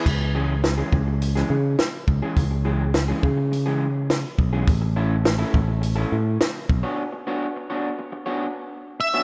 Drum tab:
CC |x---------------|----------------|----------------|----------------|
HH |----o---o---o---|o---o---o---o---|o---o---o---o---|----------------|
SD |----o----o--o---|----o-------o---|----o-------o---|----------------|
BD |o-----o-------o-|o-----o-------o-|o-----o-------o-|----------------|